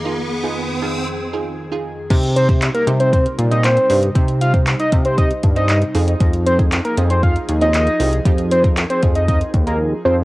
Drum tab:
CC |----------------|x---------------|----------------|----------------|
HH |----------------|xxxxxxxxxxxxxxox|xxxxxxxxxxxxxxox|xxxxxxxxxxxxxxox|
CP |----------------|----x-------x---|----x-------x---|----x-------x---|
BD |----------------|o--o----o-------|o--o--o-o-o-----|o--o----o-------|

CC |----------------|
HH |xxxxxxxxxxxx----|
CP |----x-----------|
BD |o--o--o-o-o-----|